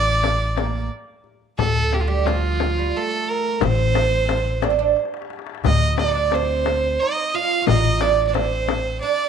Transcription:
Already playing: upright bass A1, oud D4, violin D5
0.23 darbuka tek, frame drum
0.56 oud A#3, darbuka tek, frame drum
0.91 darbuka ka
1.24 darbuka ka
1.59 upright bass D2, oud A3, violin A4, frame drum, darbuka dum
1.93 violin G4, darbuka tek, frame drum
2.00 violin F4
2.08 oud G3, violin G4
2.26 oud F3, violin F4, darbuka tek, frame drum
2.60 darbuka tek, frame drum
2.79 oud G3
2.96 oud A3, violin A4
3.28 violin A#4, darbuka ka
3.60 upright bass A1, oud C4, violin C5, darbuka dum, frame drum
3.70 oud C4
3.78 oud C4
3.86 oud C4
3.94 oud C4, darbuka tek, frame drum
4.00 oud C4
4.08 oud C4
4.17 oud C4
4.24 oud C4
4.28 oud C4, darbuka tek, frame drum
4.37 oud C4
4.44 oud C4
4.62 oud D4, darbuka tek, frame drum
4.70 oud C4
4.79 oud D4
4.96 darbuka tek
5.05 darbuka ka
5.14 darbuka tek
5.22 darbuka ka
5.30 darbuka tek
5.39 darbuka ka
5.47 darbuka tek
5.55 darbuka ka
5.64 upright bass D2, oud D#4, violin D#5, darbuka dum, frame drum
5.98 oud D4, violin D5, darbuka tek, frame drum
6.08 oud D#4
6.15 oud D4
6.31 oud C4, violin C5, darbuka tek, frame drum
6.66 darbuka tek, frame drum
7.00 oud D#4, violin D#5
7.33 oud F4, violin F5, darbuka ka
7.62 oud F4
7.67 upright bass A1, oud D#4, violin D#5, darbuka dum, frame drum
8.01 oud D4, violin D5, darbuka tek, frame drum
8.27 oud D4, violin D5
8.34 oud C4, violin C5, darbuka tek, frame drum
8.68 darbuka tek, frame drum
9.01 oud D4, violin D5, darbuka ka

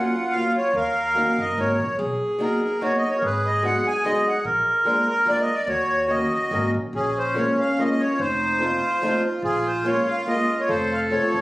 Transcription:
Already playing: steel-string acoustic guitar F#3 A#3 C#4 F4, accordion F4 F#5
0.31 steel-string acoustic guitar F#3 A#3, accordion F5
0.35 steel-string acoustic guitar C#4 F4
0.57 accordion C#5
0.74 upright bass D#2, accordion A#4 F5
1.14 steel-string acoustic guitar F#3 A#3 C#4 D#4
1.38 upright bass F#1, accordion D#5
1.57 upright bass G#1, steel-string acoustic guitar F#3 A#3 C#4 D#4, accordion C#5
1.80 upright bass A#1
1.98 upright bass B1, accordion G#4
2.38 steel-string acoustic guitar F#3 A#3 B3 D#4, accordion A#4
2.64 accordion A#4
2.81 steel-string acoustic guitar F#3 A#3 B3 D#4, accordion F#4 C#5
2.98 accordion D#5
3.10 accordion C#5
3.18 upright bass G#1, accordion A#4
3.22 accordion G#4 B4
3.46 accordion D#5
3.63 steel-string acoustic guitar F#3 G#3 B3 D#4, accordion F#5
3.87 accordion G#5
4.04 steel-string acoustic guitar F#3 G#3 B3 D#4, accordion D#5
4.27 accordion F#5
4.44 upright bass A#1, accordion A#4
4.84 steel-string acoustic guitar F3 G#3 A#3 D4, accordion A#4
5.08 accordion A#4
5.25 steel-string acoustic guitar F3 G#3 A#3 D4, accordion D5
5.41 accordion D#5
5.54 accordion D5
5.67 upright bass D#2, accordion F#4 C#5
6.08 steel-string acoustic guitar D#3 F#3 A#3 C#4, accordion D#5
6.51 upright bass G#1, steel-string acoustic guitar D#3 F#3 A#3 C#4
6.74 upright bass A#1
6.93 upright bass A#1, accordion C#4 G#4
7.18 accordion C5
7.34 steel-string acoustic guitar F3 G#3 A#3 C#4, accordion C#5
7.60 accordion F5
7.78 steel-string acoustic guitar F3 G#3 A#3 C#4, accordion D#5
7.85 accordion D#5
7.91 accordion D#5
8.00 accordion C#5
8.13 accordion F4
8.19 upright bass F1, accordion D#4 C5
8.59 steel-string acoustic guitar F3 A3 C4 D#4, accordion F4
9.02 steel-string acoustic guitar F3 A3 C4 D#4
9.42 upright bass A#1, accordion F4 G#4
9.66 accordion C5
9.84 steel-string acoustic guitar G#3 A#3 C#4 F4, accordion C#5
10.07 accordion F5
10.26 steel-string acoustic guitar G#3 A#3 C#4 F4, accordion D#5
10.60 accordion C#5
10.69 upright bass F1, accordion A4 C5
10.92 accordion F5
11.10 steel-string acoustic guitar F3 A3 C4 F4, accordion C#5
11.34 upright bass C2

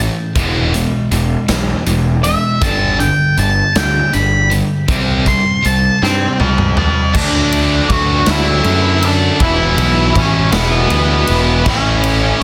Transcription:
Already playing: distorted electric guitar A2
0.00 distorted electric guitar E3
0.36 picked electric bass E1, distorted electric guitar E2 B2 E3 G#3 B3, kick, closed hi-hat
0.74 distorted electric guitar E2 B2 E3 G#3, closed hi-hat
1.11 picked electric bass E1, distorted electric guitar E2 B2 E3 G#3, closed hi-hat
1.48 picked electric bass B1, distorted electric guitar E2 B2 E3 G#3, snare, closed hi-hat
1.86 picked electric bass E1, distorted electric guitar E2 B2 E3 G#3, closed hi-hat
2.24 distorted electric guitar E2 B2 E3 G#3, lead electric guitar E5, closed hi-hat
2.62 picked electric bass G1, distorted electric guitar G2 D3 G3, lead electric guitar A5, kick, closed hi-hat
3.00 distorted electric guitar G2 D3, lead electric guitar G5, closed hi-hat
3.37 picked electric bass G1, distorted electric guitar G2 D3, lead electric guitar A5, closed hi-hat
3.75 picked electric bass D2, distorted electric guitar G2 D3, lead electric guitar G5, snare, closed hi-hat
4.13 picked electric bass G1, distorted electric guitar G2 D3, lead electric guitar B5, closed hi-hat
4.50 distorted electric guitar G2 D3, closed hi-hat
4.88 picked electric bass C2, distorted electric guitar C3 G3 C4, kick, closed hi-hat
5.25 distorted electric guitar C3 G3, lead electric guitar C6, kick, closed hi-hat
5.63 picked electric bass C2, distorted electric guitar C3 G3, lead electric guitar A5, closed hi-hat
6.02 picked electric bass G2, distorted electric guitar C3 G3, lead electric guitar C4 C5 C6, snare
6.40 picked electric bass C#2, distorted electric guitar C3 G3, lead electric guitar A5, high tom
6.58 mid tom
6.77 distorted electric guitar C3 G3, lead electric guitar A5, mid tom
7.14 picked electric bass D2, distorted electric guitar D3 F#3 A3 D4, lead electric guitar D4 D5, kick, crash
7.51 distorted electric guitar F#3 A3 D4, ride
7.89 picked electric bass D2, lead electric guitar F#4 F#5, kick, ride
8.26 picked electric bass D2, distorted electric guitar D3 F#3 A3 D4, lead electric guitar E4 E5, snare, ride
8.64 picked electric bass F#2, distorted electric guitar D3 F#3 A3, ride
8.68 distorted electric guitar D4
9.02 distorted electric guitar F#3 A3 D4, lead electric guitar D4 D5, ride
9.39 picked electric bass E1, distorted electric guitar E2 B2 E3 G#3 B3, lead electric guitar E4 E5, kick, ride
9.43 distorted electric guitar E4
9.78 picked electric bass B1, distorted electric guitar G#3 B3 E4, ride
10.15 picked electric bass A1, lead electric guitar C#4 C#5, kick, ride
10.52 picked electric bass E1, distorted electric guitar B2 G#3 B3 E4, lead electric guitar B3 B4, snare, ride
10.56 distorted electric guitar E2 E3
10.90 picked electric bass D2, distorted electric guitar E3 G#3 B3, ride
10.94 distorted electric guitar E4
11.27 picked electric bass E1, distorted electric guitar B3 E4, ride
11.32 distorted electric guitar G#3
11.66 picked electric bass A1, distorted electric guitar A2 E3 A3 C#4 E4, lead electric guitar C#4 C#5, kick, crash
12.03 distorted electric guitar A3 C#4 E4, ride

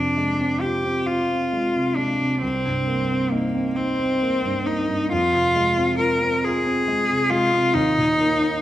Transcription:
Already playing: grand piano F2 C3, cello D4
0.17 grand piano G#3
0.40 grand piano C4
0.61 grand piano F4, cello G4
0.85 grand piano C4
1.06 cello F4, grand piano F4
1.30 grand piano C4
1.53 grand piano G#3
1.76 grand piano C3
1.96 grand piano G#3, cello D4
2.21 grand piano C3
2.42 grand piano C2, cello C4
2.65 grand piano G2
2.87 grand piano A#3
3.11 grand piano C4
3.31 cello A#3, grand piano D#4
3.54 grand piano C4
3.76 cello C4, grand piano D#4
3.99 grand piano C4
4.22 grand piano A#3
4.45 grand piano G2
4.66 grand piano A#3, cello D#4
4.88 grand piano G2
5.12 grand piano F2, cello F4
5.33 grand piano C3
5.56 grand piano G#3
5.77 grand piano C4
5.98 grand piano F4, cello A#4
6.21 grand piano C4
6.44 grand piano F4, cello G#4
6.66 grand piano C4
6.88 grand piano G#3
7.09 grand piano C3
7.30 grand piano G#3, cello F4
7.52 grand piano C3
7.74 grand piano D#2, cello D#4
7.98 grand piano A#2
8.20 grand piano A#3
8.42 grand piano D#4

